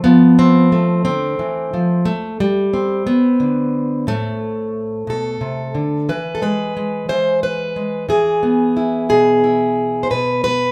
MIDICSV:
0, 0, Header, 1, 2, 480
1, 0, Start_track
1, 0, Tempo, 670391
1, 35, Time_signature, 6, 3, 24, 8
1, 7674, End_track
2, 0, Start_track
2, 0, Title_t, "Steel-string acoustic guitar"
2, 0, Program_c, 0, 25
2, 27, Note_on_c, 0, 59, 100
2, 37, Note_on_c, 0, 53, 83
2, 277, Note_on_c, 0, 60, 107
2, 511, Note_off_c, 0, 59, 0
2, 517, Note_on_c, 0, 57, 70
2, 742, Note_off_c, 0, 60, 0
2, 750, Note_on_c, 0, 60, 91
2, 754, Note_off_c, 0, 53, 0
2, 757, Note_on_c, 0, 50, 74
2, 993, Note_off_c, 0, 50, 0
2, 996, Note_on_c, 0, 52, 60
2, 1235, Note_off_c, 0, 52, 0
2, 1242, Note_on_c, 0, 53, 64
2, 1446, Note_off_c, 0, 57, 0
2, 1471, Note_on_c, 0, 57, 96
2, 1472, Note_off_c, 0, 60, 0
2, 1478, Note_off_c, 0, 53, 0
2, 1712, Note_off_c, 0, 57, 0
2, 1721, Note_on_c, 0, 55, 96
2, 1958, Note_on_c, 0, 60, 64
2, 2192, Note_off_c, 0, 55, 0
2, 2195, Note_on_c, 0, 59, 84
2, 2434, Note_on_c, 0, 50, 64
2, 2913, Note_off_c, 0, 50, 0
2, 2914, Note_off_c, 0, 59, 0
2, 2914, Note_on_c, 0, 45, 85
2, 2922, Note_on_c, 0, 57, 115
2, 3629, Note_off_c, 0, 45, 0
2, 3631, Note_on_c, 0, 47, 71
2, 3651, Note_on_c, 0, 69, 87
2, 3870, Note_off_c, 0, 47, 0
2, 3873, Note_on_c, 0, 48, 56
2, 4113, Note_off_c, 0, 48, 0
2, 4114, Note_on_c, 0, 50, 60
2, 4354, Note_off_c, 0, 50, 0
2, 4355, Note_off_c, 0, 60, 0
2, 4357, Note_off_c, 0, 57, 0
2, 4359, Note_on_c, 0, 52, 75
2, 4362, Note_off_c, 0, 69, 0
2, 4363, Note_on_c, 0, 71, 87
2, 4544, Note_on_c, 0, 69, 73
2, 4590, Note_off_c, 0, 71, 0
2, 4594, Note_off_c, 0, 69, 0
2, 4596, Note_on_c, 0, 56, 64
2, 4601, Note_on_c, 0, 71, 88
2, 4842, Note_off_c, 0, 56, 0
2, 4845, Note_on_c, 0, 56, 50
2, 5072, Note_off_c, 0, 52, 0
2, 5075, Note_off_c, 0, 71, 0
2, 5075, Note_on_c, 0, 52, 70
2, 5078, Note_on_c, 0, 72, 99
2, 5316, Note_off_c, 0, 72, 0
2, 5321, Note_on_c, 0, 71, 83
2, 5549, Note_off_c, 0, 56, 0
2, 5558, Note_on_c, 0, 56, 41
2, 5765, Note_off_c, 0, 52, 0
2, 5767, Note_off_c, 0, 56, 0
2, 5790, Note_on_c, 0, 52, 70
2, 5794, Note_off_c, 0, 71, 0
2, 5797, Note_on_c, 0, 68, 84
2, 6035, Note_on_c, 0, 59, 57
2, 6277, Note_on_c, 0, 64, 49
2, 6505, Note_off_c, 0, 68, 0
2, 6510, Note_on_c, 0, 47, 72
2, 6514, Note_on_c, 0, 68, 95
2, 6749, Note_off_c, 0, 64, 0
2, 6757, Note_on_c, 0, 64, 46
2, 7183, Note_on_c, 0, 72, 64
2, 7203, Note_off_c, 0, 47, 0
2, 7203, Note_off_c, 0, 52, 0
2, 7207, Note_off_c, 0, 64, 0
2, 7233, Note_off_c, 0, 72, 0
2, 7233, Note_on_c, 0, 47, 69
2, 7234, Note_off_c, 0, 68, 0
2, 7238, Note_on_c, 0, 71, 94
2, 7464, Note_off_c, 0, 71, 0
2, 7468, Note_off_c, 0, 59, 0
2, 7471, Note_on_c, 0, 59, 63
2, 7475, Note_on_c, 0, 71, 110
2, 7674, Note_off_c, 0, 47, 0
2, 7674, Note_off_c, 0, 59, 0
2, 7674, Note_off_c, 0, 71, 0
2, 7674, End_track
0, 0, End_of_file